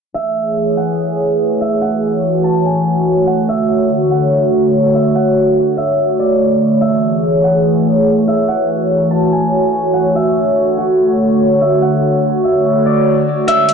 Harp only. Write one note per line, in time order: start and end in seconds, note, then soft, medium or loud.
0.14 1.61 E5 loud
0.77 1.81 F#5 medium
1.61 3.33 E5 medium
1.81 3.26 F#5 loud
2.44 2.71 A5 medium
2.65 4.15 G#5 medium
3.27 4.11 F#5 medium
3.48 4.94 E5 medium
4.11 5.15 F#5 medium
4.94 5.77 E5 medium
5.15 6.76 F#5 loud
5.77 6.81 E5 medium
6.19 8.04 D5 medium
6.81 8.27 E5 loud
7.44 8.48 F#5 medium
8.28 10.00 E5 medium
8.48 9.93 F#5 loud
9.11 9.38 A5 medium
9.32 10.82 G#5 medium
9.93 10.77 F#5 medium
10.15 11.61 E5 medium
10.78 11.82 F#5 medium
11.61 12.43 E5 medium
11.82 13.43 F#5 loud
12.44 13.47 E5 medium
12.86 13.74 D5 medium
13.48 13.74 E5 loud